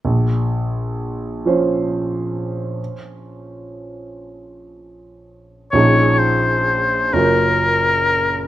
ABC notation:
X:1
M:6/8
L:1/8
Q:3/8=43
K:Bbm
V:1 name="Oboe"
z6 | z6 | d c2 B3 |]
V:2 name="Grand piano"
B,,,3 [F,DFc]3- | [F,DFc]6 | [B,,,F,DEA]3 [G,,,G,DFB]3 |]